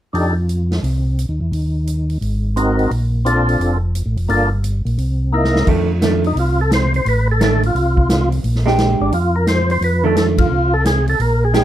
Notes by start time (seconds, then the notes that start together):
0.13 F2 D4 D#4 G4 A4, open hi-hat
0.49 closed hi-hat
0.71 snare, open hi-hat
0.83 C2, open hi-hat
1.19 closed hi-hat
1.29 D#2
1.41 E2
1.52 D#2, open hi-hat
1.87 closed hi-hat
2.10 open hi-hat
2.21 G#1, open hi-hat
2.56 C4 D#4 F#4 A#4, closed hi-hat
2.79 open hi-hat
2.91 A#1, open hi-hat
3.25 C4 D4 F4 A4, closed hi-hat
3.49 open hi-hat
3.60 F1, open hi-hat
3.95 closed hi-hat
4.06 A1
4.17 F1, open hi-hat
4.29 G1 A#3 D4 F4 A4, open hi-hat
4.64 closed hi-hat
4.85 A#1, open hi-hat
4.98 C2, open hi-hat
5.32 A#3 D#4 E4 A#4
5.44 snare
5.56 snare
5.67 F2 D#3 A3 D4, kick, crash
6.02 D#3 A3 D4, snare, closed hi-hat
6.24 D#4, open hi-hat
6.35 C2, open hi-hat
6.39 F4
6.61 A4
6.71 C5, snare, closed hi-hat
6.94 C5, open hi-hat
7.05 A1 B4, open hi-hat
7.31 A4
7.41 D#3 A3 D4 A4, snare, closed hi-hat
7.63 F4, open hi-hat
7.75 C2, open hi-hat
7.97 kick
8.10 snare, closed hi-hat
8.32 open hi-hat
8.44 A#1, open hi-hat
8.55 snare
8.66 G#3 D4 G4, snare
8.78 snare, closed hi-hat
9.00 G#1 D4
9.12 F2 F4, open hi-hat
9.36 A#4
9.47 C5, snare, closed hi-hat
9.70 C5, open hi-hat
9.81 F2 B4, open hi-hat
10.04 D#3 A3 D4 A4
10.16 A4, snare, closed hi-hat
10.38 F4, kick, ride
10.50 C2
10.74 A4
10.85 G#4, snare, closed hi-hat
11.07 A4, open hi-hat
11.20 A#1 A#4, open hi-hat
11.45 G#4
11.54 G#3 D4 G4, snare, closed hi-hat